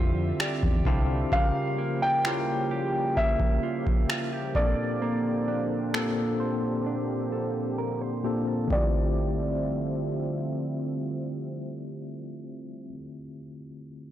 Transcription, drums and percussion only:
0.40 finger snap
0.63 kick
0.85 kick
1.32 kick
2.25 finger snap
3.17 kick
3.40 kick
3.87 kick
4.10 finger snap
4.55 kick
5.94 finger snap
8.71 kick

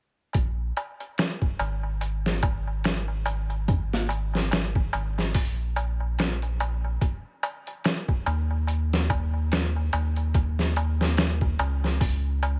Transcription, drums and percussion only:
0.33 kick, closed hi-hat, darbuka tek
0.77 closed hi-hat, darbuka tek
1.00 closed hi-hat, darbuka tek
1.18 snare, closed hi-hat, darbuka tek
1.41 kick, darbuka tek
1.59 closed hi-hat, darbuka tek
1.83 darbuka tek
2.01 closed hi-hat, darbuka tek
2.26 snare
2.43 kick, closed hi-hat, darbuka tek
2.67 darbuka tek
2.84 snare, closed hi-hat, darbuka tek
3.08 darbuka tek
3.26 closed hi-hat, darbuka tek
3.50 closed hi-hat, darbuka tek
3.68 kick, closed hi-hat, darbuka tek
3.93 snare
4.09 closed hi-hat, darbuka tek
4.33 snare, darbuka tek
4.51 snare, closed hi-hat, darbuka tek
4.75 kick, darbuka tek
4.93 closed hi-hat, darbuka tek
5.18 snare, darbuka tek
5.34 kick, open hi-hat, darbuka tek
5.76 closed hi-hat, darbuka tek
6.00 darbuka tek
6.18 snare, closed hi-hat, darbuka tek
6.42 closed hi-hat, darbuka tek
6.60 closed hi-hat, darbuka tek
6.84 darbuka tek
7.01 kick, closed hi-hat, darbuka tek
7.43 closed hi-hat, darbuka tek
7.67 closed hi-hat, darbuka tek
7.84 snare, closed hi-hat, darbuka tek
8.08 kick, darbuka tek
8.26 closed hi-hat, darbuka tek
8.51 darbuka tek
8.67 closed hi-hat, darbuka tek
8.93 snare
9.10 kick, closed hi-hat, darbuka tek
9.34 darbuka tek
9.52 snare, closed hi-hat, darbuka tek
9.76 darbuka tek
9.93 closed hi-hat, darbuka tek
10.16 closed hi-hat, darbuka tek
10.34 kick, closed hi-hat, darbuka tek
10.59 snare
10.76 closed hi-hat, darbuka tek
11.01 snare, darbuka tek
11.17 snare, closed hi-hat, darbuka tek
11.41 kick, darbuka tek
11.59 closed hi-hat, darbuka tek
11.84 snare, darbuka tek
12.00 kick, open hi-hat, darbuka tek
12.43 closed hi-hat, darbuka tek

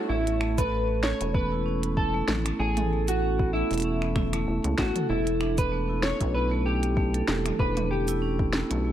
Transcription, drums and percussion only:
0.27 closed hi-hat
0.41 finger snap
0.58 kick, closed hi-hat, cabasa
1.03 snare
1.21 closed hi-hat
1.34 kick
1.83 closed hi-hat
1.97 kick
2.28 snare, mid tom
2.46 finger snap, closed hi-hat
2.77 closed hi-hat, mid tom
3.08 closed hi-hat, cabasa
3.39 kick
3.71 closed hi-hat
3.73 closed hi-hat
3.78 closed hi-hat
3.80 closed hi-hat
3.82 closed hi-hat
4.02 finger snap
4.16 finger snap, kick, mid tom
4.33 finger snap, closed hi-hat
4.64 closed hi-hat
4.78 finger snap, kick, snare
4.96 closed hi-hat, mid tom
5.27 closed hi-hat
5.41 finger snap
5.58 kick, closed hi-hat, cabasa
6.03 snare
6.21 kick, closed hi-hat
6.83 closed hi-hat
6.97 kick
7.14 closed hi-hat
7.28 snare
7.46 finger snap, closed hi-hat, mid tom
7.59 kick
7.77 closed hi-hat, mid tom
8.08 closed hi-hat, cabasa
8.39 kick
8.53 snare
8.71 closed hi-hat

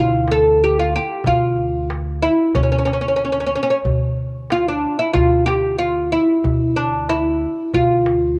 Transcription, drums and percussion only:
0.28 darbuka tek
0.93 darbuka ka
1.24 darbuka dum
1.90 darbuka tek
2.55 darbuka dum
2.87 darbuka tek
3.52 darbuka ka
3.85 darbuka dum
4.50 darbuka tek
4.82 darbuka ka
5.14 darbuka dum
5.48 darbuka tek
6.13 darbuka ka
6.44 darbuka dum
7.09 darbuka tek
7.74 darbuka dum
8.06 darbuka tek

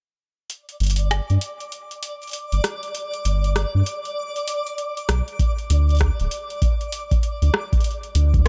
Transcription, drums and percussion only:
0.50 closed hi-hat
0.69 closed hi-hat
0.80 closed hi-hat
0.83 closed hi-hat
0.87 closed hi-hat
0.90 closed hi-hat
0.96 closed hi-hat
0.99 closed hi-hat
1.11 cross-stick, closed hi-hat
1.30 closed hi-hat
1.41 closed hi-hat
1.60 closed hi-hat
1.72 closed hi-hat
1.91 closed hi-hat
2.03 closed hi-hat
2.22 closed hi-hat
2.24 closed hi-hat
2.27 closed hi-hat
2.29 closed hi-hat
2.31 closed hi-hat
2.33 closed hi-hat
2.52 closed hi-hat
2.64 cross-stick, closed hi-hat
2.83 closed hi-hat
2.95 closed hi-hat
3.14 closed hi-hat
3.25 closed hi-hat
3.44 closed hi-hat
3.56 cross-stick, closed hi-hat
3.86 closed hi-hat
4.05 closed hi-hat
4.36 closed hi-hat
4.48 closed hi-hat
4.67 closed hi-hat
4.78 closed hi-hat
4.97 closed hi-hat
5.09 cross-stick, closed hi-hat
5.28 closed hi-hat
5.39 kick, closed hi-hat
5.58 closed hi-hat
5.70 closed hi-hat
5.89 closed hi-hat
5.91 closed hi-hat
5.95 closed hi-hat
5.97 closed hi-hat
5.99 kick, cross-stick, closed hi-hat
6.01 closed hi-hat
6.20 closed hi-hat
6.31 closed hi-hat
6.50 closed hi-hat
6.62 kick, closed hi-hat
6.81 closed hi-hat
6.92 closed hi-hat
7.11 kick, closed hi-hat
7.23 closed hi-hat
7.42 closed hi-hat
7.54 cross-stick
7.73 kick, closed hi-hat
7.80 closed hi-hat
7.84 closed hi-hat
7.91 closed hi-hat
8.03 closed hi-hat
8.15 closed hi-hat
8.34 kick, closed hi-hat

